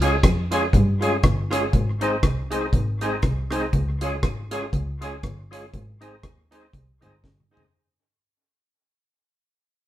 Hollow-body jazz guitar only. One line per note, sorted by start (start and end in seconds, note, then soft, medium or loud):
0.01 0.10 F4 medium
0.01 0.11 G#4 medium
0.01 0.12 C#5 medium
0.51 0.60 F4 medium
0.51 0.61 G#4 medium
0.51 0.61 C#5 medium
1.01 1.10 F4 medium
1.01 1.11 G#4 medium
1.01 1.11 C#5 medium
1.51 1.60 F4 medium
1.51 1.61 G#4 medium
1.51 1.61 C#5 medium
2.01 2.10 D#4 medium
2.01 2.11 G#4 medium
2.01 2.11 C5 medium
2.51 2.60 D#4 medium
2.51 2.60 G#4 medium
2.51 2.61 C5 medium
3.01 3.10 D#4 medium
3.01 3.11 G#4 medium
3.01 3.11 C5 medium
3.51 3.60 D#4 medium
3.51 3.61 G#4 medium
3.51 3.61 C5 medium
4.01 4.10 F4 medium
4.01 4.11 G#4 medium
4.01 4.11 C#5 medium
4.51 4.60 F4 medium
4.51 4.61 G#4 medium
4.51 4.61 C#5 medium
5.01 5.10 F4 medium
5.01 5.11 G#4 medium
5.01 5.11 C#5 medium
5.52 5.60 F4 medium
5.52 5.61 G#4 medium
5.52 5.61 C#5 medium
6.01 6.10 D#4 medium
6.01 6.11 G#4 loud
6.01 6.11 C5 medium
6.51 6.60 D#4 medium
6.51 6.61 G#4 medium
6.51 6.61 C5 loud
7.01 7.10 D#4 medium
7.01 7.11 G#4 medium
7.01 7.11 C5 loud
7.51 7.60 D#4 medium
7.51 7.61 G#4 medium
7.51 7.61 C5 medium